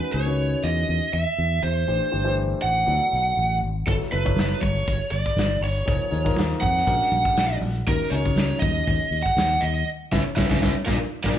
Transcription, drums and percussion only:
3.88 kick loud
3.88 closed hi-hat medium
4.01 snare soft
4.01 closed hi-hat soft
4.13 closed hi-hat medium
4.26 kick medium
4.26 closed hi-hat soft
4.36 snare loud
4.36 closed hi-hat medium
4.36 high conga medium
4.51 snare soft
4.51 closed hi-hat soft
4.62 kick medium
4.62 closed hi-hat medium
4.62 muted conga soft
4.62 high conga medium
4.76 closed hi-hat soft
4.87 kick medium
4.87 closed hi-hat medium
4.87 muted conga soft
5.01 closed hi-hat soft
5.12 closed hi-hat medium
5.12 muted conga soft
5.26 kick medium
5.26 closed hi-hat soft
5.37 snare loud
5.37 closed hi-hat medium
5.37 high conga medium
5.52 closed hi-hat soft
5.64 open hi-hat medium
5.77 closed hi-hat soft
5.87 kick loud
5.87 closed hi-hat medium
5.87 muted conga soft
6.02 closed hi-hat soft
6.14 closed hi-hat medium
6.26 kick medium
6.26 snare soft
6.26 closed hi-hat soft
6.36 snare loud
6.36 closed hi-hat medium
6.36 high conga medium
6.51 snare soft
6.51 closed hi-hat soft
6.62 kick medium
6.62 closed hi-hat medium
6.62 muted conga soft
6.62 low conga medium
6.76 snare soft
6.76 closed hi-hat soft
6.87 kick medium
6.87 closed hi-hat medium
6.87 muted conga soft
7.00 snare soft
7.00 closed hi-hat soft
7.12 closed hi-hat medium
7.12 muted conga soft
7.12 high conga medium
7.25 kick medium
7.25 closed hi-hat soft
7.37 snare loud
7.37 closed hi-hat medium
7.51 closed hi-hat soft
7.61 open hi-hat medium
7.61 high conga medium
7.76 closed hi-hat soft
7.87 kick loud
7.87 closed hi-hat medium
7.87 muted conga soft
8.01 snare soft
8.01 closed hi-hat soft
8.12 closed hi-hat medium
8.25 kick medium
8.25 closed hi-hat soft
8.36 snare loud
8.36 closed hi-hat medium
8.36 high conga medium
8.50 closed hi-hat soft
8.62 kick medium
8.62 closed hi-hat medium
8.62 muted conga soft
8.62 high conga medium
8.75 closed hi-hat soft
8.87 kick medium
8.87 closed hi-hat medium
8.87 muted conga soft
9.01 closed hi-hat soft
9.11 closed hi-hat medium
9.11 muted conga soft
9.26 kick medium
9.26 closed hi-hat soft
9.37 snare loud
9.37 closed hi-hat medium
9.37 high conga medium
9.51 closed hi-hat soft
9.63 open hi-hat medium
9.75 closed hi-hat soft
10.12 kick medium
10.12 snare medium
10.12 high conga medium
10.37 kick loud
10.37 snare medium
10.37 high conga loud
10.50 kick medium
10.50 snare medium
10.50 high conga loud
10.62 kick medium
10.62 snare loud
10.62 high conga medium
10.87 kick loud
10.87 snare medium
10.87 high conga medium
11.24 kick medium
11.24 snare medium
11.24 high conga loud

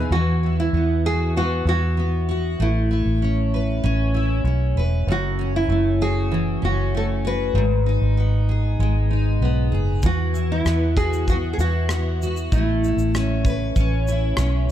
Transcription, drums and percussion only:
10.03 kick medium
10.03 shaker medium
10.35 shaker soft
10.66 cross-stick medium
10.66 shaker medium
10.97 kick medium
10.97 shaker soft
11.13 shaker soft
11.28 kick medium
11.28 shaker medium
11.59 shaker soft
11.89 cross-stick loud
11.89 shaker medium
12.22 shaker soft
12.37 shaker soft
12.52 kick medium
12.52 shaker medium
12.84 shaker soft
12.99 shaker soft
13.15 cross-stick loud
13.15 shaker medium
13.45 kick medium
13.45 shaker soft
13.76 kick medium
13.76 shaker medium
14.08 shaker soft
14.37 cross-stick loud
14.37 shaker medium

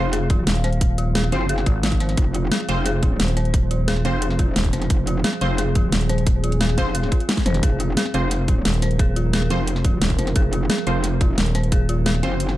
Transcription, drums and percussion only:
0.13 snare soft
0.13 closed hi-hat medium
0.30 kick loud
0.30 closed hi-hat medium
0.47 snare loud
0.47 closed hi-hat medium
0.56 closed hi-hat soft
0.64 snare soft
0.64 closed hi-hat medium
0.73 closed hi-hat soft
0.81 kick loud
0.81 closed hi-hat medium
0.98 closed hi-hat medium
1.15 snare loud
1.15 closed hi-hat medium
1.24 snare soft
1.32 closed hi-hat medium
1.49 closed hi-hat medium
1.58 snare soft
1.66 kick loud
1.66 closed hi-hat medium
1.83 snare loud
1.83 closed hi-hat medium
1.92 kick medium
1.92 closed hi-hat soft
2.00 snare soft
2.00 closed hi-hat medium
2.09 snare soft
2.09 closed hi-hat soft
2.17 kick loud
2.17 closed hi-hat medium
2.34 closed hi-hat medium
2.52 snare loud
2.52 closed hi-hat medium
2.60 snare soft
2.69 closed hi-hat medium
2.86 snare soft
2.86 closed hi-hat medium
3.03 kick loud
3.03 closed hi-hat medium
3.20 snare loud
3.20 closed hi-hat medium
3.28 closed hi-hat soft
3.37 snare soft
3.37 closed hi-hat medium
3.45 closed hi-hat soft
3.54 kick loud
3.54 closed hi-hat medium
3.71 closed hi-hat medium
3.88 snare loud
3.88 closed hi-hat medium
3.96 snare soft
4.05 closed hi-hat medium
4.22 closed hi-hat medium
4.30 snare soft
4.39 kick medium
4.39 closed hi-hat medium
4.56 snare loud
4.56 closed hi-hat medium
4.65 kick medium
4.65 closed hi-hat soft
4.73 snare soft
4.73 closed hi-hat medium
4.82 snare soft
4.82 closed hi-hat soft
4.90 kick loud
4.90 closed hi-hat medium
5.07 closed hi-hat medium
5.24 snare loud
5.24 closed hi-hat medium
5.33 snare soft
5.41 closed hi-hat medium
5.58 snare soft
5.58 closed hi-hat loud
5.75 kick loud
5.75 closed hi-hat medium
5.92 snare loud
5.92 closed hi-hat loud
6.01 closed hi-hat soft
6.09 snare soft
6.09 closed hi-hat medium
6.18 closed hi-hat soft
6.27 kick loud
6.27 closed hi-hat medium
6.44 closed hi-hat medium
6.52 closed hi-hat soft
6.61 snare loud
6.61 closed hi-hat medium
6.69 snare soft
6.78 kick medium
6.78 closed hi-hat medium
6.95 closed hi-hat loud
7.03 snare soft
7.12 kick loud
7.12 closed hi-hat medium
7.20 closed hi-hat soft
7.29 snare loud
7.29 closed hi-hat loud
7.29 high tom medium
7.37 kick medium
7.37 snare medium
7.37 closed hi-hat soft
7.46 snare soft
7.46 closed hi-hat medium
7.46 mid tom medium
7.54 snare soft
7.54 closed hi-hat soft
7.54 mid tom medium
7.63 kick loud
7.63 closed hi-hat medium
7.80 closed hi-hat medium
7.97 snare loud
7.97 closed hi-hat loud
8.06 snare soft
8.14 closed hi-hat medium
8.31 snare soft
8.31 closed hi-hat loud
8.48 kick loud
8.48 closed hi-hat medium
8.65 snare loud
8.65 closed hi-hat loud
8.74 closed hi-hat soft
8.82 snare soft
8.82 closed hi-hat medium
8.91 closed hi-hat soft
8.99 kick loud
8.99 closed hi-hat medium
9.16 closed hi-hat medium
9.33 snare loud
9.33 closed hi-hat medium
9.42 snare soft
9.50 closed hi-hat medium
9.67 closed hi-hat loud
9.76 snare soft
9.85 kick loud
9.85 closed hi-hat medium
10.02 snare loud
10.02 closed hi-hat loud
10.10 kick medium
10.10 closed hi-hat soft
10.19 snare soft
10.19 closed hi-hat medium
10.27 snare soft
10.27 closed hi-hat soft
10.36 kick loud
10.36 closed hi-hat medium
10.53 closed hi-hat medium
10.70 snare loud
10.70 closed hi-hat medium
10.78 snare soft
10.87 closed hi-hat medium
11.04 snare soft
11.04 closed hi-hat medium
11.21 kick loud
11.21 closed hi-hat medium
11.38 snare loud
11.38 closed hi-hat medium
11.46 closed hi-hat soft
11.55 snare soft
11.55 closed hi-hat medium
11.63 closed hi-hat soft
11.72 kick loud
11.72 closed hi-hat medium
11.89 closed hi-hat medium
12.06 snare loud
12.06 closed hi-hat medium
12.15 snare soft
12.23 closed hi-hat medium
12.40 closed hi-hat medium
12.49 snare soft

